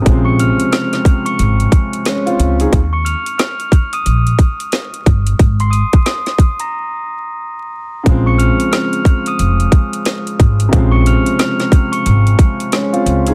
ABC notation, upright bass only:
X:1
M:4/4
L:1/16
Q:"Swing 16ths" 1/4=90
K:Bbm
V:1 name="Upright bass" clef=bass
B,,,3 z4 z A,,,2 z4 D,,2 | E,,3 z4 z B,,,2 z4 =G,,,2 | A,,,3 z12 z | B,,,3 z4 z F,,,2 z4 A,,,2 |
B,,,3 z4 z A,,,2 z4 D,,2 |]